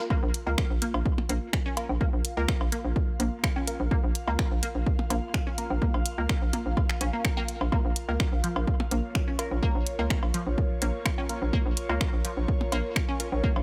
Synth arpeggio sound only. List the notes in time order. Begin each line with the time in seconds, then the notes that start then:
0.10 A#3
0.47 A#3
0.82 A#3
1.29 A#3
1.66 C#4
2.01 A#3
2.37 A#3
2.72 A#3
3.20 A#3
3.56 C#4
3.91 A#3
4.28 A#3
4.63 A#3
5.10 A#3
5.47 C#4
5.82 A#3
6.18 A#3
6.53 A#3
7.01 C#4
7.13 A#3
7.37 A#3
7.72 A#3
8.09 A#3
8.44 F3
8.91 A#3
9.28 C#4
9.63 A#3
9.99 A#3
10.34 F3
10.82 A#3
11.18 C#4
11.53 A#3
11.89 A#3
12.25 F3
12.72 A#3
13.09 C#4
13.44 A#3